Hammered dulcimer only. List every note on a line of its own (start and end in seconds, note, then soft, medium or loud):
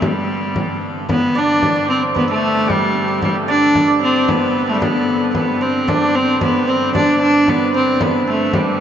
1.09 1.94 B4 medium
1.35 1.75 D5 medium
1.75 3.48 D5 medium
1.88 2.20 C5 medium
2.14 4.07 B4 medium
2.28 3.07 A4 medium
2.68 3.21 G4 medium
3.08 4.67 A4 medium
3.21 6.35 G4 medium
3.48 3.87 D5 medium
3.88 5.87 D5 medium
4.01 4.33 C5 medium
4.27 4.80 B4 medium
4.67 4.74 A4 medium
4.74 7.67 A4 medium
4.80 5.34 B4 medium
5.35 5.67 B4 medium
5.61 6.14 C5 medium
5.88 6.94 D5 medium
6.14 6.47 C5 medium
6.41 6.73 B4 medium
6.67 7.54 C5 medium
6.94 8.80 D5 medium
7.48 7.80 B4 medium
7.74 8.06 C5 medium
8.00 8.80 B4 medium
8.27 8.80 A4 medium
8.54 8.80 G4 medium